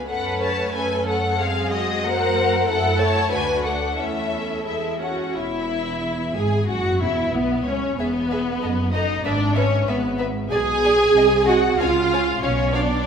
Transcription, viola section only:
0.08 1.35 A3 soft
0.08 0.70 C#4 soft
0.74 1.38 C#4 soft
1.40 2.03 G#3 soft
1.40 2.04 C4 soft
2.04 2.67 F#3 medium
2.04 2.68 A#3 medium
2.67 3.28 A3 medium
2.67 3.27 E4 medium
3.31 3.97 A3 medium
3.31 3.97 D4 medium
3.99 4.66 A3 soft
3.99 4.67 C#4 soft
4.66 4.99 G#3 soft
4.66 4.99 E4 medium
5.00 5.35 C#4 soft
5.00 5.34 F#4 soft
5.34 6.35 E4 medium
6.35 6.68 G#4 medium
6.68 7.00 F#4 medium
7.00 7.33 E4 medium
7.33 7.66 B3 medium
7.67 7.98 C#4 medium
7.99 8.91 B3 medium
8.93 9.24 D#4 medium
9.25 9.56 D4 medium
9.56 9.87 C#4 medium
9.89 10.20 B3 medium
10.51 11.44 G#4 loud
11.47 11.79 F#4 medium
11.79 12.43 F4 medium
12.43 12.74 C#4 medium
12.75 13.06 D4 medium

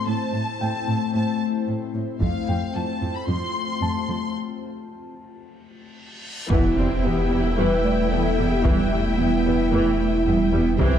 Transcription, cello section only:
0.07 0.15 A2 medium
0.34 0.42 A2 soft
0.61 0.69 A2 soft
0.88 0.96 A2 soft
1.15 1.23 A2 soft
1.68 1.76 A2 soft
1.95 2.03 A2 soft
2.21 2.29 F2 medium
2.48 2.56 F2 soft
2.75 2.83 F2 soft
3.02 3.10 F2 soft
3.28 3.36 F2 soft
3.82 3.90 F2 soft
4.08 4.16 F2 soft
6.50 6.75 B3 soft
6.77 7.03 C4 soft
7.03 7.57 B3 soft
7.57 7.83 G3 soft
7.84 8.11 A3 soft
8.11 8.64 B3 soft
8.65 8.91 G3 soft
8.91 9.18 A3 soft
9.18 9.72 B3 soft
9.72 10.25 A3 soft
10.25 10.51 G3 soft
10.51 10.78 B3 soft
10.78 10.99 C4 medium

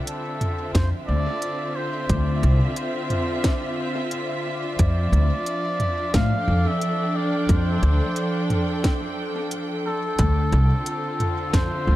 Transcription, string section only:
0.00 4.79 D3 medium
0.00 6.96 C4 medium
0.00 1.46 D4 medium
0.00 6.26 F4 medium
0.00 0.71 A4 medium
0.00 6.39 E5 medium
0.00 0.71 G5 medium
4.79 10.19 F3 medium
5.13 11.11 D4 medium
6.37 11.96 A4 medium
6.41 11.96 G5 medium
10.19 11.96 D3 medium
10.55 11.96 C4 medium
10.81 11.96 F4 loud
11.71 11.96 E5 medium

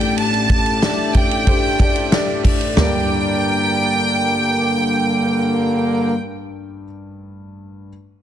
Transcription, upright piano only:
0.00 2.41 A1 medium
0.00 2.41 A2 medium
0.00 0.63 D4 medium
0.00 0.63 G4 medium
0.00 0.63 A4 medium
0.00 0.63 D5 medium
0.82 1.29 D4 medium
0.82 1.29 G4 medium
0.82 1.29 A4 medium
0.82 1.29 D5 medium
1.47 1.70 D4 medium
1.47 1.71 G4 medium
1.47 1.71 A4 medium
1.47 1.71 C5 medium
1.79 2.03 D4 medium
1.79 2.03 G4 medium
1.79 2.03 A4 medium
1.79 2.04 D5 medium
2.12 2.59 D4 medium
2.12 2.59 G4 medium
2.12 2.59 A4 medium
2.12 2.59 D5 loud
2.75 6.84 G2 medium
2.75 6.83 D4 medium
2.75 6.84 G4 medium
2.75 6.84 A#4 medium
2.80 6.85 D5 medium

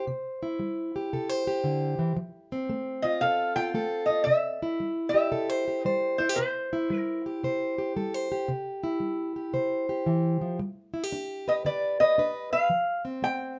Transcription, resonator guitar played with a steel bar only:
3.02 3.22 D#5 medium
3.21 3.55 F5 loud
3.56 4.05 G5 loud
4.06 4.23 D#5 medium
4.24 5.08 E5 loud
5.09 5.87 E5 medium
5.87 6.20 D5 medium
6.18 6.35 C5 medium
6.36 6.98 C5 medium
6.98 7.20 A#4 medium
11.49 11.54 D#5 medium
11.66 11.98 D5 medium
12.00 12.54 D#5 medium
12.53 13.01 F5 medium
13.24 13.59 G5 loud

